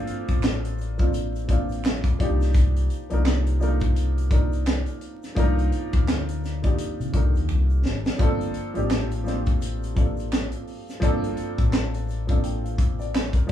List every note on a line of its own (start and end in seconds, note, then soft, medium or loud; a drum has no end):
0.00 0.98 F3 loud
0.00 0.99 A#3 loud
0.00 1.00 C4 loud
0.00 1.01 D4 loud
0.00 0.88 F4 loud
0.00 2.22 A#4 medium
0.07 closed hi-hat medium
0.07 shaker soft
0.28 2.01 A1 medium
0.28 kick medium
0.28 closed hi-hat soft
0.28 shaker soft
0.42 finger snap soft
0.42 snare loud
0.42 clap medium
0.42 shaker medium
0.64 closed hi-hat medium
0.64 shaker soft
0.78 closed hi-hat soft
0.78 shaker soft
0.98 1.45 F3 medium
0.98 1.45 A#3 medium
0.98 1.46 C4 medium
0.98 1.46 D4 medium
0.98 1.47 F4 medium
0.98 kick medium
0.98 closed hi-hat soft
0.98 shaker soft
1.14 closed hi-hat medium
1.14 shaker medium
1.35 closed hi-hat soft
1.35 shaker soft
1.48 2.17 F3 medium
1.48 2.18 A#3 medium
1.48 2.20 C4 medium
1.48 2.19 D4 medium
1.48 2.21 F4 medium
1.48 kick medium
1.48 closed hi-hat medium
1.48 shaker soft
1.69 closed hi-hat soft
1.69 shaker soft
1.84 finger snap medium
1.84 snare loud
1.84 clap medium
1.84 shaker medium
2.04 kick medium
2.04 closed hi-hat soft
2.04 shaker soft
2.19 2.87 C2 medium
2.19 3.02 F3 medium
2.19 3.02 A#3 medium
2.19 3.03 D4 medium
2.19 3.03 D#4 medium
2.19 3.04 G4 medium
2.19 kick medium
2.19 closed hi-hat medium
2.40 snare soft
2.40 closed hi-hat soft
2.40 shaker soft
2.54 kick loud
2.54 closed hi-hat medium
2.54 shaker medium
2.76 closed hi-hat medium
2.76 shaker soft
2.90 closed hi-hat medium
2.90 shaker soft
3.10 4.84 C2 medium
3.10 3.57 F3 medium
3.10 3.57 A#3 medium
3.10 3.57 D4 medium
3.10 3.58 D#4 medium
3.10 3.58 A#4 medium
3.10 closed hi-hat soft
3.10 shaker soft
3.25 finger snap soft
3.25 snare loud
3.25 clap medium
3.25 shaker soft
3.47 closed hi-hat medium
3.47 shaker soft
3.60 4.26 F3 medium
3.60 4.26 A#3 medium
3.60 4.27 D4 medium
3.60 4.27 D#4 medium
3.60 4.28 A#4 medium
3.60 closed hi-hat soft
3.60 shaker soft
3.80 kick medium
3.80 closed hi-hat soft
3.80 shaker soft
3.96 closed hi-hat medium
3.96 shaker medium
4.18 closed hi-hat soft
4.18 shaker soft
4.30 5.30 F3 medium
4.30 5.30 A#3 medium
4.30 5.30 D4 medium
4.30 5.31 D#4 medium
4.30 5.31 A#4 medium
4.30 kick medium
4.30 closed hi-hat medium
4.30 shaker soft
4.52 closed hi-hat soft
4.52 shaker soft
4.66 finger snap soft
4.66 snare loud
4.66 clap medium
4.66 shaker medium
4.86 closed hi-hat soft
4.86 shaker soft
5.01 closed hi-hat medium
5.23 snare soft
5.23 closed hi-hat soft
5.23 shaker soft
5.35 5.69 C2 loud
5.35 6.51 F3 medium
5.35 6.51 A#3 medium
5.35 6.52 D4 loud
5.35 6.52 D#4 loud
5.35 kick loud
5.35 closed hi-hat medium
5.35 shaker medium
5.39 6.53 A#4 loud
5.58 closed hi-hat soft
5.58 shaker soft
5.72 closed hi-hat medium
5.72 shaker soft
5.93 6.75 D2 medium
5.93 kick medium
5.93 closed hi-hat soft
5.93 shaker soft
6.08 finger snap medium
6.08 snare loud
6.08 clap medium
6.08 shaker soft
6.29 closed hi-hat medium
6.29 shaker soft
6.44 snare soft
6.44 closed hi-hat medium
6.44 shaker soft
6.62 7.09 F3 medium
6.62 7.10 A#3 medium
6.62 7.10 D4 medium
6.62 7.11 D#4 medium
6.62 kick medium
6.62 closed hi-hat soft
6.62 shaker soft
6.67 7.11 G4 medium
6.78 closed hi-hat medium
6.78 shaker medium
7.00 7.13 C3 medium
7.00 closed hi-hat soft
7.00 shaker soft
7.12 7.33 C2 medium
7.12 8.12 F3 medium
7.12 8.12 A#3 medium
7.12 8.13 D4 medium
7.12 8.13 D#4 medium
7.12 kick medium
7.12 closed hi-hat medium
7.12 shaker soft
7.17 8.14 A#4 medium
7.35 7.48 D#2 medium
7.35 closed hi-hat soft
7.35 shaker soft
7.49 7.81 C2 medium
7.49 finger snap medium
7.49 shaker medium
7.70 shaker soft
7.85 8.04 G#1 medium
7.85 snare medium
8.05 snare medium
8.05 shaker soft
8.18 8.52 G1 loud
8.18 8.70 F3 medium
8.18 8.70 A#3 medium
8.18 8.71 C4 medium
8.18 8.71 D4 medium
8.18 kick loud
8.18 closed hi-hat medium
8.18 shaker medium
8.22 8.72 A4 loud
8.41 closed hi-hat soft
8.41 shaker soft
8.54 closed hi-hat medium
8.54 shaker soft
8.74 10.49 A1 medium
8.74 9.21 F3 medium
8.74 9.22 A#3 medium
8.74 9.22 C4 medium
8.74 9.23 D4 medium
8.74 9.23 G4 medium
8.74 closed hi-hat soft
8.74 shaker soft
8.90 finger snap soft
8.90 snare loud
8.90 clap medium
8.90 shaker medium
9.11 closed hi-hat soft
9.11 shaker soft
9.24 9.91 F3 medium
9.24 9.91 A#3 medium
9.24 9.92 C4 medium
9.24 9.92 D4 medium
9.24 snare soft
9.24 closed hi-hat medium
9.24 shaker soft
9.28 9.93 C5 medium
9.46 kick medium
9.46 closed hi-hat soft
9.46 shaker soft
9.61 closed hi-hat medium
9.61 shaker medium
9.83 closed hi-hat soft
9.83 shaker medium
9.95 10.94 F3 medium
9.95 10.95 A#3 medium
9.95 10.95 C4 medium
9.95 10.96 D4 medium
9.95 kick medium
9.95 closed hi-hat medium
9.95 shaker soft
9.99 10.96 A4 medium
10.17 closed hi-hat soft
10.17 shaker soft
10.32 finger snap medium
10.32 snare loud
10.32 clap medium
10.32 shaker medium
10.52 closed hi-hat soft
10.52 shaker soft
10.67 open hi-hat soft
10.89 snare soft
10.89 closed hi-hat soft
10.89 shaker soft
11.00 11.34 G1 loud
11.00 12.16 F3 loud
11.00 12.16 A#3 loud
11.00 12.17 C4 medium
11.00 12.17 D4 loud
11.00 kick medium
11.00 closed hi-hat medium
11.00 shaker medium
11.04 12.18 A4 loud
11.24 closed hi-hat medium
11.24 shaker soft
11.37 closed hi-hat medium
11.37 shaker soft
11.58 13.31 A1 medium
11.58 kick medium
11.58 closed hi-hat soft
11.58 shaker soft
11.73 finger snap soft
11.73 snare loud
11.73 clap medium
11.73 shaker medium
11.94 closed hi-hat soft
11.94 shaker soft
12.09 closed hi-hat medium
12.09 shaker soft
12.27 12.74 F3 medium
12.27 12.75 A#3 medium
12.27 12.75 C4 medium
12.27 12.76 D4 medium
12.27 12.44 A4 medium
12.27 kick medium
12.27 closed hi-hat soft
12.27 shaker soft
12.44 12.63 G5 medium
12.44 closed hi-hat medium
12.44 shaker medium
12.64 12.97 F5 medium
12.64 closed hi-hat soft
12.64 shaker soft
12.78 kick medium
12.78 closed hi-hat medium
12.78 shaker soft
12.99 13.13 D5 medium
12.99 closed hi-hat soft
12.99 shaker soft
13.14 13.34 C5 medium
13.14 finger snap medium
13.14 snare loud
13.14 clap medium
13.14 shaker medium
13.33 13.52 A#4 medium
13.33 kick medium
13.33 closed hi-hat soft
13.33 shaker soft
13.47 13.52 F3 medium
13.47 13.52 A#3 medium
13.47 13.52 D4 medium
13.47 closed hi-hat medium